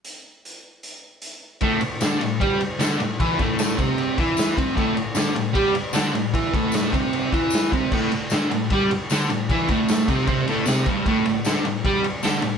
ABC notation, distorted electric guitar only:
X:1
M:4/4
L:1/8
Q:1/4=153
K:Am
V:1 name="Distorted electric guitar" clef=bass
z8 | [A,,A,] A,, [D,D] A,, [G,G] z [D,D] A,, | [E,E] [A,,A,]2 [C,C]2 [E,E]2 [C,C] | [A,,A,] A,, [D,D] A,, [G,G] z [D,D] A,, |
[E,E] [A,,A,]2 [C,C]2 [E,E]2 [C,C] | [A,,A,] A,, [D,D] A,, [G,G] z [D,D] A,, | [E,E] [A,,A,]2 [C,C] [C,C] [A,,A,] [C,C] [G,,G,] | [A,,A,] A,, [D,D] A,, [G,G] z [D,D] A,, |]